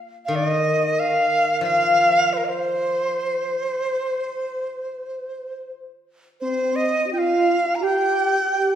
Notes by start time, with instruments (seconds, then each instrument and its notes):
0.25 guzheng D#3, dizi F5
0.35 dizi D5
0.46 dizi D#5
1.00 dizi F5
1.61 guzheng F3, dizi F5
2.33 dizi A#4 C5
2.44 dizi D#5
2.49 dizi C5
6.40 soft synth lead C4, xiao C4, dizi C5
6.47 soft synth lead C4
6.55 soft synth lead C4
6.63 soft synth lead C4
6.72 soft synth lead C4, dizi D#5
6.81 soft synth lead C4
6.87 soft synth lead C4
7.06 xiao G4
7.12 xiao F4, soft synth lead F4, dizi G5
7.18 dizi F5
7.65 soft synth lead F4
7.75 dizi A#5
7.80 xiao G4, soft synth lead G4, dizi G5
7.88 soft synth lead G4
7.93 soft synth lead G4
8.02 soft synth lead G4
8.09 soft synth lead G4
8.18 soft synth lead G4
8.25 soft synth lead G4
8.32 soft synth lead G4
8.41 soft synth lead G4
8.46 soft synth lead G4
8.52 xiao G4, soft synth lead G4
8.57 soft synth lead G4
8.66 soft synth lead G4